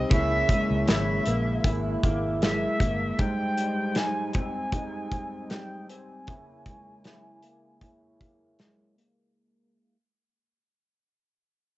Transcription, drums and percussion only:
0.11 kick loud
0.11 closed hi-hat medium
0.49 kick medium
0.49 closed hi-hat medium
0.88 snare loud
0.88 closed hi-hat medium
1.26 closed hi-hat medium
1.64 kick loud
1.64 closed hi-hat medium
2.03 kick medium
2.03 closed hi-hat medium
2.42 snare loud
2.42 closed hi-hat medium
2.80 kick medium
2.80 closed hi-hat medium
3.19 kick loud
3.19 closed hi-hat medium
3.57 closed hi-hat medium
3.95 snare medium
3.95 closed hi-hat medium
4.33 kick medium
4.33 closed hi-hat medium
4.72 kick medium
4.72 closed hi-hat medium
5.12 kick medium
5.12 closed hi-hat medium
5.50 snare loud
5.50 closed hi-hat medium
5.90 closed hi-hat medium
6.27 kick loud
6.27 closed hi-hat medium
6.66 kick medium
6.66 closed hi-hat medium
7.04 snare medium
7.04 closed hi-hat medium
7.42 closed hi-hat medium
7.81 kick medium
7.81 closed hi-hat medium
8.21 kick medium
8.21 closed hi-hat medium
8.59 snare medium
8.59 closed hi-hat medium
8.98 closed hi-hat medium

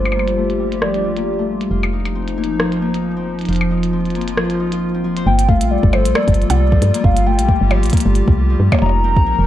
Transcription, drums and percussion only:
0.05 closed hi-hat soft
0.05 percussion blips medium
0.12 percussion blips medium
0.19 percussion blips soft
0.28 closed hi-hat medium
0.50 closed hi-hat soft
0.72 closed hi-hat medium
0.82 cross-stick loud
0.94 closed hi-hat soft
1.17 closed hi-hat medium
1.61 closed hi-hat medium
1.83 closed hi-hat soft
1.83 percussion blips medium
2.05 closed hi-hat medium
2.05 percussion blips soft
2.28 closed hi-hat soft
2.44 closed hi-hat medium
2.60 cross-stick loud
2.72 closed hi-hat soft
2.94 closed hi-hat medium
3.39 closed hi-hat soft
3.41 closed hi-hat soft
3.45 closed hi-hat soft
3.49 closed hi-hat soft
3.53 closed hi-hat soft
3.55 closed hi-hat soft
3.55 closed hi-hat medium
3.61 percussion blips medium
3.83 closed hi-hat medium
4.05 closed hi-hat soft
4.10 closed hi-hat soft
4.15 closed hi-hat soft
4.21 closed hi-hat soft
4.28 closed hi-hat medium
4.37 cross-stick loud
4.50 closed hi-hat soft
4.72 closed hi-hat medium
5.17 closed hi-hat medium
5.39 closed hi-hat medium
5.49 kick loud
5.61 closed hi-hat medium
5.83 kick loud
5.93 percussion blips medium
6.05 closed hi-hat medium
6.15 cross-stick loud
6.15 percussion blips medium
6.28 kick loud
6.28 closed hi-hat soft
6.34 closed hi-hat soft
6.42 closed hi-hat soft
6.50 closed hi-hat medium
6.50 percussion blips medium
6.72 kick loud
6.82 closed hi-hat medium
6.94 closed hi-hat medium
7.04 kick loud
7.17 closed hi-hat medium
7.39 closed hi-hat medium
7.49 kick loud
7.71 percussion blips medium
7.83 closed hi-hat soft
7.86 closed hi-hat soft
7.90 closed hi-hat soft
7.93 kick loud
7.93 closed hi-hat soft
7.97 closed hi-hat medium
8.00 closed hi-hat medium
8.15 closed hi-hat soft
8.28 kick loud
8.72 kick loud
8.72 percussion blips medium
8.74 percussion blips medium
8.79 percussion blips medium
8.82 percussion blips soft
8.86 percussion blips soft
8.89 percussion blips soft
9.17 kick loud

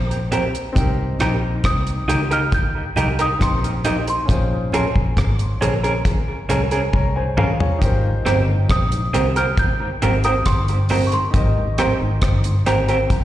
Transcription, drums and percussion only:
0.11 closed hi-hat soft
0.31 closed hi-hat medium
0.31 low conga medium
0.55 closed hi-hat medium
0.75 kick loud
0.75 closed hi-hat loud
0.75 low conga medium
1.19 cross-stick medium
1.19 closed hi-hat medium
1.19 low conga medium
1.64 kick loud
1.64 cross-stick loud
1.64 closed hi-hat medium
1.87 closed hi-hat soft
2.08 closed hi-hat medium
2.08 high conga soft
2.31 closed hi-hat soft
2.52 kick loud
2.52 closed hi-hat medium
2.52 high conga soft
2.52 low conga medium
2.96 closed hi-hat medium
2.96 low conga medium
3.19 closed hi-hat soft
3.41 kick loud
3.41 cross-stick loud
3.41 closed hi-hat loud
3.64 closed hi-hat medium
3.84 closed hi-hat medium
3.84 low conga medium
4.07 closed hi-hat medium
4.28 kick loud
4.28 closed hi-hat medium
4.28 low conga medium
4.72 closed hi-hat medium
4.72 low conga medium
4.96 kick medium
5.17 kick loud
5.17 cross-stick loud
5.17 closed hi-hat medium
5.39 closed hi-hat medium
5.61 closed hi-hat medium
5.61 high conga soft
5.84 closed hi-hat soft
6.05 kick loud
6.05 closed hi-hat medium
6.05 high conga soft
6.05 low conga medium
6.49 closed hi-hat medium
6.49 low conga medium
6.71 closed hi-hat soft
6.93 kick loud
6.93 high tom medium
7.37 mid tom medium
7.37 low conga medium
7.60 floor tom medium
7.81 kick loud
7.81 closed hi-hat medium
7.81 low conga medium
8.26 cross-stick medium
8.26 closed hi-hat medium
8.26 low conga medium
8.70 kick loud
8.70 cross-stick loud
8.70 closed hi-hat medium
8.92 closed hi-hat medium
9.14 closed hi-hat medium
9.14 high conga soft
9.36 closed hi-hat soft
9.57 kick loud
9.57 closed hi-hat medium
9.57 high conga soft
9.57 low conga medium
10.02 closed hi-hat medium
10.02 low conga medium
10.24 closed hi-hat soft
10.46 kick loud
10.46 cross-stick loud
10.46 closed hi-hat medium
10.68 closed hi-hat soft
10.89 open hi-hat medium
10.89 low conga medium
11.12 closed hi-hat medium
11.34 kick loud
11.34 closed hi-hat medium
11.34 low conga medium
11.78 cross-stick medium
11.78 closed hi-hat medium
11.78 low conga medium
12.22 kick loud
12.22 cross-stick loud
12.22 closed hi-hat medium
12.44 closed hi-hat medium
12.66 cross-stick medium
12.66 closed hi-hat medium
12.66 high conga soft
12.88 closed hi-hat soft
13.10 kick loud
13.10 closed hi-hat medium
13.10 high conga soft
13.10 low conga medium

